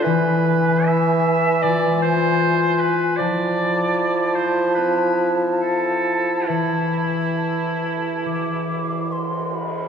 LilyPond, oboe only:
\new Staff \with { instrumentName = "Oboe" } { \time 4/4 \key e \phrygian \tempo 4 = 73 b'4 e''4 d''8 c''4 b'8 | d''4. c''8 b'8 r8 a'4 | e'2. r4 | }